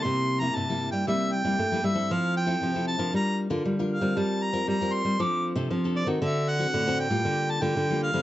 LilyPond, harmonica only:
\new Staff \with { instrumentName = "Harmonica" } { \time 4/4 \key f \major \tempo 4 = 116 c'''8. bes''16 a''8. g''16 e''8 g''4 e''8 | f''8 g''4 a''8 bes''8 r4 f''8 | a''8 bes''8 bes''8 c'''8 d'''8 r4 d''8 | e''8 fis''4 g''4 a''16 g''8. f''8 | }